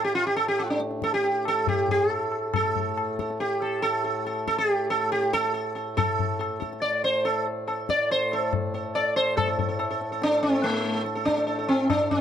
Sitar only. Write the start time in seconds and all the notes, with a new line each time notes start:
0.04 G4
0.15 F4
0.27 G4
0.36 A4
0.48 G4
0.59 F4
0.70 D4
1.04 A4
1.14 G4
1.48 A4
1.68 G4
1.91 G4
2.10 A4
2.56 A4
3.19 A4
3.40 G4
3.62 A4
3.82 A4
4.04 A4
4.26 A4
4.47 A4
4.58 G4
4.90 A4
5.12 G4
5.33 A4
5.54 A4
5.75 A4
5.97 A4
6.39 A4
6.60 A4
6.82 D5
7.04 C5
7.25 A4
7.67 A4
7.90 D5
8.11 C5
8.33 A4
8.74 A4
8.95 D5
9.16 C5
9.37 A4
9.48 A4
9.59 A4
9.69 A4
9.79 A4
9.91 A4
10.12 A4
10.23 D4
10.32 A4
10.43 C4
10.53 A4
10.64 A3
10.74 A4
10.84 A4
10.94 A4
11.04 A4
11.15 A4
11.25 D4
11.37 A4
11.47 A4
11.59 A4
11.68 C4
11.79 A4
11.90 D4
12.01 A4
12.11 C4